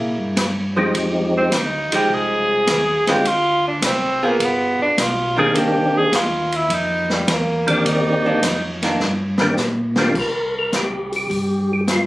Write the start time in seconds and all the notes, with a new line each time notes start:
Already playing: A#3 E4 G#4
0.00 A#2
0.18 G2
0.36 G2, kick, snare, hi-hat pedal, ride
0.76 F3 G#3 C4 D#4 G4
0.94 F2, kick, ride
1.38 C4
1.51 D2, kick, snare, hi-hat pedal, ride
1.56 D#4
1.92 D2 F3 G#3 D#4 G4, ride
2.09 C2, kick
2.14 G#4
2.67 D#2, kick, snare, hi-hat pedal, ride
3.07 D#2 D3 G#3 C4 F4 G4, snare, ride
3.24 D2 F4, kick, ride
3.67 D4
3.82 C2 C4, kick, snare, hi-hat pedal, ride
4.23 A#3 B3 F4 G#4
4.39 G1, kick, ride
4.44 B3
4.79 G1 D4
4.97 B1 F4, kick, snare, hi-hat pedal, ride
5.36 D#3 A#3 C4 D4 G4 G#4
5.54 C2 D#3 A#3 D4 G4, kick, ride
5.94 C2 G#4
6.12 D#2 F4, kick, snare, hi-hat pedal, ride
6.52 E4, ride
6.69 F2, kick, ride
6.74 D#4
7.10 G3, snare
7.27 E2, kick, snare, hi-hat pedal, ride
7.32 A#3
7.67 D#3 A#3 C4 D4 G4 D5, ride
7.85 D#2 D#4, kick, ride
8.25 D#2 D#3 A#3 D4
8.42 F2, kick, snare, hi-hat pedal, ride
8.82 D#3 A#3 D4, snare, ride
9.00 G2, snare
9.38 D#3 A#3 C4 D4 G4, snare
9.57 A#2, snare, hi-hat pedal
9.96 D#3 A#3 C4 D4 G4, snare
10.02 F4
10.15 C2, kick, crash
10.19 A#4
10.59 A#4
10.73 G4, snare, closed hi-hat
11.12 G4, open hi-hat
11.30 G2, kick, open hi-hat
11.73 G4
11.88 F4, snare, closed hi-hat